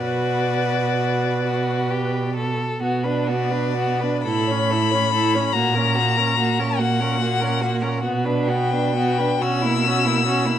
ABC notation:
X:1
M:6/8
L:1/16
Q:3/8=45
K:Bm
V:1 name="Violin"
d8- d2 z2 | z2 d4 b6 | ^a6 f6 | z2 g4 e'6 |]
V:2 name="Violin"
F6 F2 G2 A2 | F B F B F B A c A c A c | F ^A F A F A F A F A F A | F B F B F B F E F E F E |]
V:3 name="Viola"
B8- B z3 | B, D B, D B, D E C E C E C | ^A, C A, C A, C A, C A, C A, C | B, D B, D B, D C ^A, C A, C A, |]
V:4 name="Cello" clef=bass
B,,8- B,,3 z | B,,6 A,,6 | ^A,,6 A,,6 | B,,6 B,,6 |]